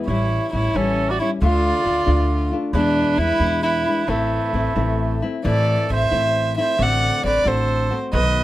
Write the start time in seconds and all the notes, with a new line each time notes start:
0.06 A1 A2 E3 G3 C#4 E4 C#5
0.53 A1 E3 G3 C#4 E4 C#5
0.75 A1 A2 E3 G3 C#4 E4 A4
1.10 F#4 D5
1.19 G3 C#4 E4 C#5
1.42 D2 D3 A3 D4 F4 D5
1.83 D2 D3 A3 D4 F4
2.06 D2 D3 A3 D4 F4
2.52 A3 D4 F4
2.73 E2 B2 E3 G#3 D4 E4 B4
3.18 E2 E3 G#3 D4 E4 B4
3.40 E2 B2 E3 G#3 D4 E4
3.63 E4 B4
3.86 E3 G#3 D4 E4
4.07 A1 A2 E3 A3 C4 E4
4.53 A1 E3 A3 C4 E4
4.75 A1 A2 E3 A3 C4 E4
5.22 A3 C4 E4
5.44 A1 A2 E3 A3 C4 E4 D5
5.49 A4
5.89 A1 E3 A3 C4 E4 C5 E5
6.11 A1 A2 E3 A3 C4 E4
6.58 A3 C4 E4 C5 E5
6.77 A1 A2 D3 A3 C4 F#4
6.81 D5 F#5
7.24 A1 D3 A3 C4 F#4 B4 D5
7.45 A1 A2 D3 A3 C4 F#4 A4 C5
7.91 A3 C4 F#4
8.13 B1 B2 D#3 A3 B3 F#4 B4 D#5